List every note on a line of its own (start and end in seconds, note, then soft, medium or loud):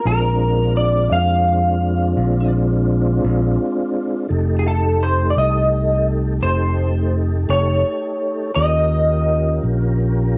0.05 1.07 A#1 medium
0.05 4.27 G#3 medium
0.05 4.27 C4 medium
0.05 4.27 D4 medium
0.05 4.27 F4 medium
0.05 0.77 A#4 medium
0.77 1.12 D5 medium
1.11 2.13 F2 medium
1.11 2.50 F5 medium
2.17 3.20 A#1 medium
3.24 3.57 A#1 medium
4.29 5.33 F1 medium
4.29 8.52 A3 medium
4.29 8.51 D#4 medium
4.29 8.52 G4 medium
4.29 8.51 A4 medium
4.59 4.66 G#4 soft
4.68 5.03 A4 medium
5.03 5.29 C5 medium
5.30 5.37 D5 medium
5.36 6.39 C2 medium
5.36 6.04 D#5 medium
6.42 7.45 F1 medium
6.42 7.10 C5 medium
7.49 7.82 F1 medium
7.49 8.55 C#5 medium
8.55 9.59 D#2 medium
8.55 10.38 C#4 medium
8.55 10.38 F4 medium
8.55 10.38 G4 medium
8.55 10.38 A#4 medium
8.55 9.58 D#5 medium
9.63 10.38 A#1 medium